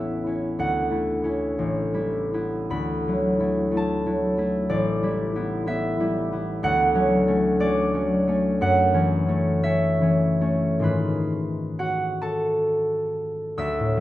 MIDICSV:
0, 0, Header, 1, 2, 480
1, 0, Start_track
1, 0, Tempo, 677966
1, 401, Time_signature, 6, 3, 24, 8
1, 1368, Tempo, 769231
1, 1848, Tempo, 692042
1, 2328, Tempo, 645161
1, 5688, Tempo, 683371
1, 6648, Tempo, 738916
1, 7128, Tempo, 823045
1, 7608, Tempo, 949367
1, 8088, Tempo, 895522
1, 9048, Tempo, 766284
1, 9313, End_track
2, 0, Start_track
2, 0, Title_t, "Harp"
2, 0, Program_c, 0, 46
2, 0, Note_on_c, 0, 33, 45
2, 0, Note_on_c, 0, 57, 35
2, 0, Note_on_c, 0, 59, 31
2, 0, Note_on_c, 0, 61, 39
2, 0, Note_on_c, 0, 64, 34
2, 0, Note_on_c, 0, 66, 35
2, 0, Note_on_c, 0, 76, 64
2, 0, Note_on_c, 0, 78, 69
2, 179, Note_off_c, 0, 61, 0
2, 183, Note_off_c, 0, 64, 0
2, 187, Note_on_c, 0, 61, 35
2, 191, Note_on_c, 0, 64, 34
2, 412, Note_off_c, 0, 78, 0
2, 415, Note_on_c, 0, 38, 47
2, 417, Note_off_c, 0, 33, 0
2, 421, Note_on_c, 0, 78, 77
2, 427, Note_off_c, 0, 59, 0
2, 632, Note_off_c, 0, 57, 0
2, 635, Note_off_c, 0, 64, 0
2, 639, Note_on_c, 0, 57, 35
2, 645, Note_on_c, 0, 64, 39
2, 868, Note_off_c, 0, 61, 0
2, 876, Note_off_c, 0, 64, 0
2, 876, Note_on_c, 0, 61, 35
2, 885, Note_on_c, 0, 64, 38
2, 1123, Note_on_c, 0, 33, 48
2, 1128, Note_off_c, 0, 66, 0
2, 1134, Note_off_c, 0, 61, 0
2, 1140, Note_off_c, 0, 38, 0
2, 1368, Note_off_c, 0, 64, 0
2, 1370, Note_on_c, 0, 55, 34
2, 1376, Note_on_c, 0, 64, 39
2, 1613, Note_off_c, 0, 64, 0
2, 1621, Note_on_c, 0, 59, 35
2, 1623, Note_on_c, 0, 64, 39
2, 1848, Note_on_c, 0, 38, 51
2, 1851, Note_on_c, 0, 83, 76
2, 1857, Note_off_c, 0, 78, 0
2, 1869, Note_off_c, 0, 55, 0
2, 1873, Note_off_c, 0, 33, 0
2, 2105, Note_off_c, 0, 64, 0
2, 2109, Note_on_c, 0, 54, 40
2, 2115, Note_on_c, 0, 64, 45
2, 2323, Note_off_c, 0, 64, 0
2, 2325, Note_off_c, 0, 57, 0
2, 2332, Note_on_c, 0, 57, 38
2, 2333, Note_on_c, 0, 64, 40
2, 2389, Note_off_c, 0, 76, 0
2, 2561, Note_off_c, 0, 57, 0
2, 2564, Note_on_c, 0, 57, 36
2, 2580, Note_off_c, 0, 64, 0
2, 2589, Note_on_c, 0, 64, 43
2, 2608, Note_on_c, 0, 81, 73
2, 2816, Note_off_c, 0, 64, 0
2, 2818, Note_off_c, 0, 54, 0
2, 2825, Note_on_c, 0, 54, 39
2, 2827, Note_on_c, 0, 64, 42
2, 3046, Note_off_c, 0, 57, 0
2, 3055, Note_off_c, 0, 64, 0
2, 3055, Note_on_c, 0, 57, 36
2, 3064, Note_on_c, 0, 64, 42
2, 3295, Note_on_c, 0, 33, 58
2, 3297, Note_on_c, 0, 74, 88
2, 3315, Note_off_c, 0, 38, 0
2, 3321, Note_off_c, 0, 54, 0
2, 3537, Note_off_c, 0, 64, 0
2, 3543, Note_on_c, 0, 55, 47
2, 3549, Note_on_c, 0, 64, 44
2, 3778, Note_off_c, 0, 59, 0
2, 3779, Note_off_c, 0, 64, 0
2, 3786, Note_on_c, 0, 59, 45
2, 3790, Note_on_c, 0, 64, 47
2, 4009, Note_off_c, 0, 64, 0
2, 4013, Note_off_c, 0, 59, 0
2, 4017, Note_on_c, 0, 64, 50
2, 4022, Note_on_c, 0, 59, 46
2, 4025, Note_on_c, 0, 76, 83
2, 4258, Note_off_c, 0, 55, 0
2, 4262, Note_off_c, 0, 64, 0
2, 4267, Note_on_c, 0, 55, 42
2, 4271, Note_on_c, 0, 64, 49
2, 4497, Note_off_c, 0, 59, 0
2, 4503, Note_off_c, 0, 64, 0
2, 4506, Note_on_c, 0, 59, 38
2, 4512, Note_on_c, 0, 64, 43
2, 4718, Note_off_c, 0, 83, 0
2, 4735, Note_on_c, 0, 38, 65
2, 4742, Note_on_c, 0, 78, 93
2, 4757, Note_off_c, 0, 33, 0
2, 4759, Note_off_c, 0, 55, 0
2, 4759, Note_off_c, 0, 59, 0
2, 4759, Note_off_c, 0, 76, 0
2, 4762, Note_off_c, 0, 64, 0
2, 4970, Note_on_c, 0, 54, 45
2, 4977, Note_on_c, 0, 61, 52
2, 5207, Note_off_c, 0, 57, 0
2, 5210, Note_off_c, 0, 61, 0
2, 5216, Note_on_c, 0, 57, 49
2, 5219, Note_on_c, 0, 61, 48
2, 5447, Note_off_c, 0, 57, 0
2, 5449, Note_off_c, 0, 74, 0
2, 5455, Note_on_c, 0, 57, 46
2, 5457, Note_off_c, 0, 61, 0
2, 5459, Note_on_c, 0, 74, 88
2, 5466, Note_on_c, 0, 61, 51
2, 5510, Note_off_c, 0, 81, 0
2, 5701, Note_off_c, 0, 61, 0
2, 5702, Note_off_c, 0, 54, 0
2, 5708, Note_on_c, 0, 54, 42
2, 5712, Note_on_c, 0, 61, 46
2, 5936, Note_off_c, 0, 57, 0
2, 5943, Note_off_c, 0, 61, 0
2, 5944, Note_on_c, 0, 57, 46
2, 5952, Note_on_c, 0, 61, 46
2, 6176, Note_off_c, 0, 78, 0
2, 6179, Note_on_c, 0, 42, 58
2, 6183, Note_off_c, 0, 38, 0
2, 6185, Note_on_c, 0, 78, 101
2, 6188, Note_off_c, 0, 74, 0
2, 6405, Note_off_c, 0, 61, 0
2, 6410, Note_on_c, 0, 52, 46
2, 6414, Note_on_c, 0, 61, 53
2, 6644, Note_off_c, 0, 57, 0
2, 6649, Note_off_c, 0, 61, 0
2, 6652, Note_on_c, 0, 57, 44
2, 6657, Note_on_c, 0, 61, 44
2, 6877, Note_off_c, 0, 57, 0
2, 6881, Note_off_c, 0, 61, 0
2, 6881, Note_on_c, 0, 76, 85
2, 6885, Note_on_c, 0, 57, 41
2, 6889, Note_on_c, 0, 61, 50
2, 7118, Note_off_c, 0, 52, 0
2, 7126, Note_on_c, 0, 52, 38
2, 7128, Note_off_c, 0, 61, 0
2, 7135, Note_on_c, 0, 61, 41
2, 7351, Note_off_c, 0, 61, 0
2, 7353, Note_off_c, 0, 57, 0
2, 7358, Note_on_c, 0, 57, 40
2, 7360, Note_on_c, 0, 61, 41
2, 7582, Note_on_c, 0, 44, 47
2, 7585, Note_on_c, 0, 51, 43
2, 7595, Note_on_c, 0, 56, 39
2, 7598, Note_on_c, 0, 65, 40
2, 7606, Note_on_c, 0, 71, 66
2, 7626, Note_off_c, 0, 52, 0
2, 7626, Note_off_c, 0, 76, 0
2, 7627, Note_off_c, 0, 61, 0
2, 7628, Note_off_c, 0, 57, 0
2, 7632, Note_off_c, 0, 42, 0
2, 7634, Note_off_c, 0, 78, 0
2, 7635, Note_off_c, 0, 54, 0
2, 8089, Note_on_c, 0, 78, 74
2, 8092, Note_on_c, 0, 66, 53
2, 8317, Note_on_c, 0, 81, 73
2, 8321, Note_on_c, 0, 69, 57
2, 9046, Note_on_c, 0, 38, 56
2, 9048, Note_on_c, 0, 88, 94
2, 9054, Note_off_c, 0, 44, 0
2, 9056, Note_off_c, 0, 51, 0
2, 9056, Note_on_c, 0, 76, 68
2, 9061, Note_off_c, 0, 56, 0
2, 9062, Note_off_c, 0, 65, 0
2, 9183, Note_on_c, 0, 45, 43
2, 9292, Note_on_c, 0, 54, 48
2, 9313, Note_off_c, 0, 38, 0
2, 9313, Note_off_c, 0, 45, 0
2, 9313, Note_off_c, 0, 54, 0
2, 9313, Note_off_c, 0, 66, 0
2, 9313, Note_off_c, 0, 69, 0
2, 9313, Note_off_c, 0, 71, 0
2, 9313, Note_off_c, 0, 76, 0
2, 9313, Note_off_c, 0, 78, 0
2, 9313, Note_off_c, 0, 81, 0
2, 9313, Note_off_c, 0, 88, 0
2, 9313, End_track
0, 0, End_of_file